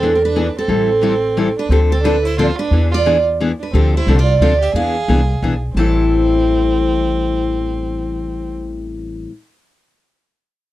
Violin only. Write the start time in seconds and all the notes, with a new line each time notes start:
Already playing: C4
0.14 C4
0.24 D4
0.59 C4
1.58 D4
1.70 C4
1.91 C4
2.03 D4
2.24 E4
2.38 F4
2.58 D4
2.91 F4
3.59 D4
3.74 C4
3.97 E4
4.18 F4
4.40 F4
4.60 G4
4.74 G#4
5.75 C4